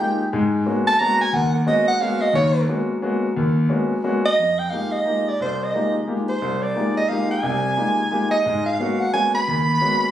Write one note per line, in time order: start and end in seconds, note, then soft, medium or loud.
0.00 0.21 G#3 medium
0.00 0.21 A#3 soft
0.00 0.21 D#4 medium
0.00 0.21 F4 medium
0.00 0.21 G4 medium
0.00 0.33 G5 loud
0.33 0.62 G#2 medium
0.33 0.62 G#3 medium
0.66 0.89 G#3 medium
0.66 0.89 A#3 medium
0.66 0.89 B3 medium
0.66 0.89 C#4 soft
0.66 0.89 F#4 medium
0.87 1.01 A5 loud
0.99 1.23 G#3 medium
0.99 1.23 A#3 soft
0.99 1.23 B3 medium
0.99 1.23 C#4 soft
0.99 1.23 F#4 medium
0.99 1.20 A#5 loud
1.21 1.36 G#5 loud
1.33 1.62 D#2 medium
1.33 1.55 F#5 loud
1.55 1.69 A#4 medium
1.66 1.89 G#3 medium
1.66 1.90 A#3 medium
1.66 1.90 B3 medium
1.66 1.90 C#4 medium
1.66 1.90 F#4 medium
1.66 1.87 D#5 medium
1.88 2.02 F#5 loud
2.00 2.23 G#3 medium
2.00 2.24 A#3 medium
2.00 2.24 B3 medium
2.00 2.24 C#4 soft
2.00 2.24 F#4 medium
2.00 2.23 F5 loud
2.21 2.34 D#5 medium
2.33 2.63 D#2 medium
2.33 2.63 D#3 medium
2.33 2.66 C#5 medium
2.68 2.91 G#3 medium
2.68 2.91 A#3 medium
2.68 2.91 B3 soft
2.68 2.91 C#4 medium
2.68 2.91 F#4 medium
3.02 3.25 G#3 medium
3.02 3.25 A#3 medium
3.02 3.25 B3 medium
3.02 3.25 C#4 medium
3.02 3.26 F#4 medium
3.36 3.65 D#2 medium
3.69 3.92 G#3 medium
3.69 3.92 A#3 soft
3.69 3.92 B3 medium
3.69 3.93 C#4 medium
3.69 3.93 F#4 medium
4.04 4.27 G#3 medium
4.04 4.27 A#3 medium
4.04 4.27 B3 medium
4.04 4.27 C#4 medium
4.04 4.27 F#4 medium
4.25 4.60 D#5 loud
4.39 4.67 F2 medium
4.59 4.71 G5 loud
4.70 4.94 G#3 soft
4.70 4.94 A#3 soft
4.70 4.94 D#4 soft
4.70 4.95 F4 soft
4.70 4.95 G4 medium
4.70 4.94 F5 medium
4.92 5.30 D#5 medium
5.05 5.28 G#3 soft
5.05 5.28 A#3 soft
5.05 5.28 D#4 soft
5.05 5.28 F4 soft
5.05 5.29 G4 medium
5.28 5.40 D5 medium
5.40 5.69 C2 medium
5.40 5.65 C5 medium
5.63 5.96 D#5 medium
5.74 5.97 G#3 soft
5.74 5.97 A#3 soft
5.74 5.97 D#4 soft
5.74 5.97 F4 soft
5.74 5.97 G4 medium
6.07 6.30 G#3 soft
6.07 6.30 A#3 soft
6.07 6.30 D#4 soft
6.07 6.31 F4 soft
6.07 6.31 G4 medium
6.29 6.64 C5 medium
6.42 6.71 C2 medium
6.63 6.97 D5 medium
6.76 6.98 G#3 soft
6.76 6.98 A#3 soft
6.76 6.98 D#4 soft
6.76 6.99 F4 soft
6.76 6.99 G4 medium
6.97 7.10 D#5 medium
7.09 7.32 G#3 soft
7.09 7.32 A#3 soft
7.09 7.33 D#4 soft
7.09 7.32 F4 soft
7.09 7.33 G4 medium
7.09 7.30 F5 medium
7.31 8.29 G#5 medium
7.43 7.72 C2 medium
7.43 7.72 C3 medium
7.77 8.00 G#3 medium
7.77 8.00 A#3 soft
7.77 8.00 D#4 soft
7.77 8.00 F4 soft
7.77 8.00 G4 soft
8.11 8.34 G#3 soft
8.11 8.34 A#3 soft
8.11 8.34 D#4 soft
8.11 8.34 F4 soft
8.11 8.34 G4 medium
8.31 8.63 D#5 medium
8.46 8.75 G#2 medium
8.46 8.75 G#3 medium
8.66 9.01 F5 medium
8.79 9.02 G#3 soft
8.79 9.02 A#3 soft
8.79 9.02 B3 soft
8.79 9.02 C#4 soft
8.79 9.03 F#4 medium
9.00 9.12 F#5 medium
9.13 9.36 G#3 soft
9.13 9.36 A#3 soft
9.13 9.36 B3 soft
9.13 9.36 C#4 soft
9.13 9.36 F#4 medium
9.13 9.33 G#5 loud
9.35 10.11 B5 loud
9.48 9.77 D#2 medium
9.81 10.04 G#3 soft
9.81 10.04 A#3 soft
9.81 10.04 B3 soft
9.81 10.04 C#4 soft
9.81 10.04 F#4 medium